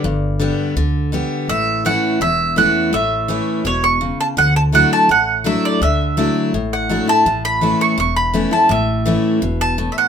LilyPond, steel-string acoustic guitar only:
\new Staff \with { instrumentName = "Steel-string acoustic guitar" } { \time 4/4 \key a \mixolydian \tempo 4 = 166 << { r4 <d g b g'>4 r4 <d g b g'>4 | r4 <e a cis' e'>4 r4 <e a cis' e'>4 | r4 <e a cis' e'>4 r2 | r4 <fis a d' e'>4 r4 <fis a d' e'>4 |
r4 <fis a d' e'>4 r4 <fis a d' e'>8 <d' e'>8 | r4 <e a cis' e'>4 r4 <e a cis' e'>8 <cis' e'>8 | r4 <e a cis' e'>4 r2 | } \\ { g,2 d2 | a,2 e,2 | a,2 b,4 cis4 | d2 a,2 |
d2 a,2 | a,2 e,2 | a,2 b,4 a,4 | } >> }